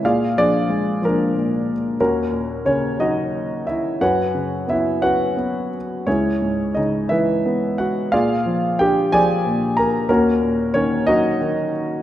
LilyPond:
<<
  \new Staff \with { instrumentName = "Grand piano" } { \time 6/8 \key dis \phrygian \tempo 4. = 60 <eis' gis' d'' eis''>8 <d' gis' d''>4 <ais d' ais'>4 r8 | <ais cis' fis' ais'>4 <cis' cis''>8 <dis' fis' dis''>4 <e' e''>8 | <fis' b' cis'' fis''>4 <e' e''>8 <fis' b' fis''>4 r8 | <cis' e' gis' cis''>4 <dis' dis''>8 <e' b' e''>4 <fis' fis''>8 |
<eis' gis' d'' eis''>4 <g' g''>8 <gis' d'' gis''>4 <ais' ais''>8 | <ais cis' fis' ais'>4 <cis' cis''>8 <dis' fis' dis''>4. | }
  \new Staff \with { instrumentName = "Grand piano" } { \clef bass \time 6/8 \key dis \phrygian ais,8 eis8 gis8 eis8 ais,4 | dis,8 ais,8 cis8 fis4. | fis,8 cis8 b8 cis'8 b4 | cis,8 gis,8 cis8 e8 b4 |
ais,8 eis8 d'8 eis8 ais,4 | dis,8 ais,8 dis8 fis8 dis4 | }
>>